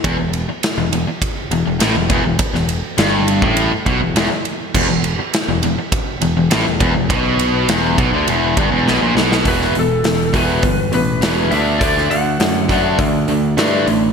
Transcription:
<<
  \new Staff \with { instrumentName = "Lead electric guitar" } { \time 4/4 \key e \minor \tempo 4 = 102 r1 | r1 | r1 | r1 |
b'8 a'4 b'4 b'4 e''8 | d''8 fis''4. r2 | }
  \new Staff \with { instrumentName = "Distorted electric guitar" } { \clef bass \time 4/4 \key e \minor e,16 e,8 r8 e,16 e,16 r8. e,16 e,16 a,16 e,16 e,16 e,16 | r16 e,8 r16 g,8. a,8 r16 b,16 e,16 e,16 r8. | e,16 e,8 r8 e,16 e,16 r8. e,16 e,16 a,16 e,16 e,16 e,16 | b,4 e,8 b,16 d16 e,8 g,16 e,16 b,16 ais,16 b,8 |
<e, b, e>8 <e, b,>8 <e, b,>8 <e, b, e>8 <e, b,>8 <e, b,>8 <e, b, e>8 <d a d'>8 | <d a d'>8 <d a>8 <d a>8 <d a d'>8 <d a>8 <d a>8 <d a d'>8 <d a>8 | }
  \new Staff \with { instrumentName = "Overdriven electric guitar" } { \clef bass \time 4/4 \key e \minor e,16 e,8 r8 e,16 e,16 r8. e,16 e,16 a,16 e,16 e,16 e,16 | r16 e,8 r16 g,8. a,8 r16 b,16 e,16 e,16 r8. | e,16 e,8 r8 e,16 e,16 r8. e,16 e,16 a,16 e,16 e,16 e,16 | b,4 e,8 b,16 d16 e,8 g,16 e,16 b,16 ais,16 b,8 |
<e, b, e>8 <e, b,>8 <e, b,>8 <e, b, e>8 <e, b,>8 <e, b,>8 <e, b, e>8 <d a d'>8 | <d a d'>8 <d a>8 <d a>8 <d a d'>8 <d a>8 <d a>8 <d a d'>8 <d a>8 | }
  \new Staff \with { instrumentName = "Picked electric bass" } { \clef bass \time 4/4 \key e \minor e,,16 e,,8 r8 e,,16 e,,16 r8. e,,16 e,,16 a,,16 e,,16 e,,16 e,,16 | r16 e,,8 r16 g,,8. a,,8 r16 b,,16 e,,16 e,,16 r8. | e,,16 e,,8 r8 e,,16 e,,16 r8. e,,16 e,,16 a,,16 e,,16 e,,16 e,,16 | b,,4 e,,8 b,,16 d,16 e,,8 g,,16 e,,16 b,,16 ais,,16 b,,8 |
e,,8 e,,8 e,,8 e,,8 g,,8 a,,8 e,,8 d,8 | d,8 d,8 fis,4 d,4 g,8 a,,8 | }
  \new DrumStaff \with { instrumentName = "Drums" } \drummode { \time 4/4 <bd cymr>8 cymr8 <cymr sn>8 cymr8 <bd cymr>8 cymr8 <cymr sn>8 <bd cymr>8 | <bd cymr>16 sn16 cymr8 <cymr sn>8 cymr16 bd16 cymr8 <bd cymr>8 <cymr sn>8 cymr8 | <cymc bd>8 cymr8 <cymr sn>8 cymr8 <bd cymr>8 cymr8 <cymr sn>8 <bd cymr>8 | <bd cymr>8 cymr8 <cymr sn>8 <bd cymr>8 cymr8 <bd cymr>8 sn8 sn16 sn16 |
<hho bd>16 sn16 hho8 <hho sn>8 <hho bd>8 <hho bd>8 hho8 <hho sn>8 hho8 | <hho bd>16 sn16 hho8 <hho sn>8 <hho bd sn>8 <hho bd>8 hho8 <hho sn>8 hho8 | }
>>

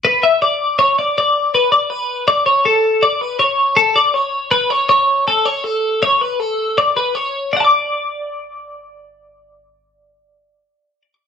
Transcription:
\new Staff \with { instrumentName = "Clean electric guitar" } { \time 5/4 \key b \dorian \tempo 4 = 160 b'8 e''8 d''4 cis''8 d''8 d''4 b'8 d''8 | b'4 d''8 cis''8 a'4 d''8 b'8 cis''4 | a'8 d''8 cis''4 b'8 cis''8 cis''4 a'8 cis''8 | a'4 cis''8 b'8 a'4 d''8 b'8 cis''4 |
<d'' fis'' a'' d'''>1~ <d'' fis'' a'' d'''>4~ | <d'' fis'' a'' d'''>1~ <d'' fis'' a'' d'''>4 | }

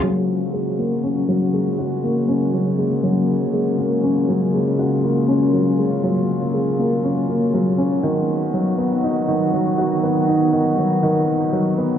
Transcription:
<<
  \new Staff \with { instrumentName = "String quartet" } { \time 4/4 \key fis \major \tempo 4 = 120 << { fis'1~ | fis'1 | eis'1~ | eis'1 |
fis'1~ | fis'1 | } \\ { <cis gis ais>1~ | <cis gis ais>1~ | <cis gis ais>1~ | <cis gis ais>1 |
<dis fis b>1~ | <dis fis b>1 | } >> }
  \new Staff \with { instrumentName = "Upright piano" } { \clef bass \time 4/4 \key fis \major fis8 r8 gis8 ais8 cis'8 fis8 gis8 fis'8 | ais8 cis'8 fis8 gis8 fis8 r8 gis8 ais8 | cis'8 fis8 gis8 fis'8 ais8 cis'8 fis8 gis8 | fis8 r8 gis8 ais8 cis'8 ais8 fis8 cis'8 |
dis8 r8 fis8 b8 dis'8 dis8 fis8 fis'8 | b8 dis'8 dis8 fis8 dis8 r8 fis8 b8 | }
>>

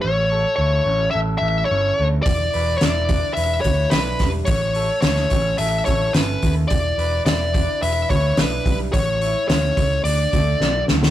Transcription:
<<
  \new Staff \with { instrumentName = "Lead electric guitar" } { \time 4/4 \key a \mixolydian \tempo 4 = 108 cis''4 cis''4 e''8 e''8 cis''8. r16 | d''4 d''4 e''8 cis''8 b'8. r16 | cis''4 cis''4 e''8 cis''8 b'8. r16 | d''4 d''4 e''8 cis''8 b'8. r16 |
cis''4 cis''4 d''4. r8 | }
  \new Staff \with { instrumentName = "Clean electric guitar" } { \time 4/4 \key a \mixolydian a,8 a'8 e'8 cis'8 a'8 e'8 cis'8 a8 | e8 b'8 e'8 d'8 b'8 e'8 d'8 g8 | a,8 a'8 e'8 cis'8 a'8 e'8 cis'8 a8 | e8 b'8 e'8 d'8 b'8 e'8 d'8 g8 |
a,8 e'8 cis'8 a8 d8 a8 fis8 d8 | }
  \new Staff \with { instrumentName = "Picked electric bass" } { \clef bass \time 4/4 \key a \mixolydian a,,4 d,8 a,,8 a,,8 a,,8 g,,8 d,8 | e,,8 e,,8 e,,4 e,,8 d,8 b,,8 e,,8 | a,,4 d,8 a,,8 a,,8 a,,8 g,,8 dis,8 | e,,8 e,,8 e,,4 e,,8 d,8 b,,8 b,,8 |
a,,4 d,8 cis,8 d,8 d,8 b,,8 d,8 | }
  \new DrumStaff \with { instrumentName = "Drums" } \drummode { \time 4/4 r4 r4 r4 r4 | <hho bd>8 hho8 <hho sn>8 <hho bd>8 hho8 <hho bd>8 <hho sn>8 <hho bd sn>8 | <hho bd>8 hho8 <hho sn>16 sn16 <hho bd>8 hho8 <hho bd>8 <hho sn>8 <hho bd>8 | <hho bd>8 hho8 <hho sn>8 <hho bd>8 hho8 <hho bd>8 <hho sn>8 <hho bd>8 |
<hho bd>8 hho8 <hho sn>8 <hho bd>8 hho8 <hho bd>8 sn8 sn16 sn16 | }
>>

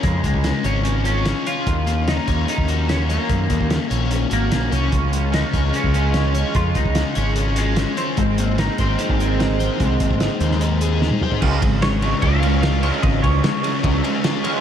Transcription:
<<
  \new Staff \with { instrumentName = "Clean electric guitar" } { \time 4/4 \key des \major \tempo 4 = 148 aes8 aes4 des'4 des'4 f'8~ | f'4 ees'4 ees'4 des'8 bes8~ | bes4 r4. bes4 des'8~ | des'4 ees'4 des'8 des'4 r8 |
f'8 ees'4 des'4 aes4 c'8~ | c'4 ees'8 c'2~ c'8~ | c'2. r4 | r4 des''4 f''4 f''4 |
ees''8 des''2. r8 | }
  \new Staff \with { instrumentName = "Overdriven electric guitar" } { \time 4/4 \key des \major <des des' f' des''>8 aes8 des'8 des''8 des'8 f'8 des'8 des''8 | ees8 bes8 des'8 des''8 des'8 ges'8 des'8 des''8 | ees8 bes8 des'8 des''8 des'8 ges'8 des'8 des''8 | des8 aes8 des'8 des''8 des'8 f'8 des'8 des''8 |
des8 aes8 des'8 des''8 des'8 f'8 des'8 des''8 | aes8 bes8 ees'8 c''8 ees'8 aes'8 ees'8 c''8 | aes8 bes8 ees'8 c''8 ees'8 aes'8 ees'8 c''8 | des4 aes8 des'8 f'8 des'8 f'8 des''8 |
des4 aes8 des'8 f'8 des'8 f'8 des''8 | }
  \new Staff \with { instrumentName = "Overdriven electric guitar" } { \time 4/4 \key des \major r1 | r1 | r1 | <aes des' f'>1~ |
<aes des' f'>1 | <ees aes c'>1~ | <ees aes c'>1 | <aes des' f'>8 <aes des'>8 <aes des'>8 <aes des'>8 <aes des'>8 <aes des'>8 <aes des'>8 <aes des' f'>8 |
<aes des'>8 <aes des'>8 <aes des'>8 <aes des'>8 <aes des'>8 <aes des'>8 <aes des'>8 <aes des' f'>8 | }
  \new Staff \with { instrumentName = "Picked electric bass" } { \clef bass \time 4/4 \key des \major f,8 des,16 des,8 r16 aes,,2 r8 | ees,4. ees,8 r16 ees,4.~ ees,16 | ges,8 ees,16 ees,8 r16 bes,,4 aes,,8 bes,,8 c,8 | des,4. des,8 r16 des,4.~ des,16 |
f,8 des,16 des,8 r16 aes,,2 r8 | aes,,4. aes,,8 r16 aes,,4.~ aes,,16 | c,8 aes,,16 aes,,8 r16 ees,2 r8 | des,8 aes,,4. des,2 |
aes,,8 des,8 r4 des,8 r4. | }
  \new DrumStaff \with { instrumentName = "Drums" } \drummode { \time 4/4 <hh bd>8 <hh bd>16 bd16 <hh sn>8 hh8 hh8 hh8 <hh sn>8 hh8 | <hh bd>8 hh8 <hh sn>8 <hh bd>8 hh16 bd16 hh8 <hh sn>8 hh8 | <hh bd>8 <hh bd>16 bd16 <hh sn>8 hh8 hh8 hh8 <hh sn>8 hh8 | <hh bd>8 hh8 <hh sn>8 <hh bd>8 hh16 bd16 hh8 <hh sn>8 hh8 |
<hh bd>8 <hh bd>16 bd16 <hh sn>8 hh8 hh8 hh8 <hh sn>8 hh8 | <hh bd>8 hh8 <hh sn>8 <hh bd>8 hh16 bd16 hh8 <hh sn>8 hh8 | <hh bd>8 <hh bd>16 bd16 <hh sn>8 hh16 sn16 hh8 hh8 sn16 tommh16 toml16 tomfh16 | <cymc bd>8 <bd cymr>8 <cymr sn>8 cymr8 <bd cymr>8 cymr8 <cymr sn>8 cymr8 |
<bd cymr>8 <bd cymr>8 <cymr sn>8 cymr8 <bd cymr>8 cymr8 <cymr sn>8 cymr8 | }
>>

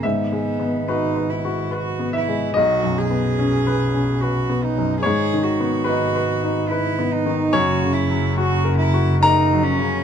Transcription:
<<
  \new Staff \with { instrumentName = "Cello" } { \time 3/4 \key b \major \tempo 4 = 72 b4 dis'8 e'8 fis'8 e'8 | fis'8 gis'4. fis'8 dis'8 | gis'8 fis'4. e'8 dis'8 | fis'8 e'8 fis'8 e'8 dis'8 cis'8 | }
  \new Staff \with { instrumentName = "Grand piano" } { \time 3/4 \key b \major e''4 b'4 r8 e''8 | dis''2. | cis''4 b'4 r4 | cis''2 ais''4 | }
  \new Staff \with { instrumentName = "Grand piano" } { \time 3/4 \key b \major \tuplet 3/2 { gis,8 gis8 b8 fis'8 b'8 fis'8 b'8 b8 gis8 } | \tuplet 3/2 { b,,8 fis,8 b8 cis'8 b'8 cis'8 b'8 b8 fis,8 } | \tuplet 3/2 { gis,8 dis8 b8 dis'8 b'8 dis'8 b'8 b8 dis8 } | \tuplet 3/2 { fis,8 cis8 fis8 fis'8 ais'8 fis'8 ais'8 fis8 cis8 } | }
  \new Staff \with { instrumentName = "Double bass" } { \clef bass \time 3/4 \key b \major gis,,2. | b,,2. | gis,,2. | fis,,2. | }
>>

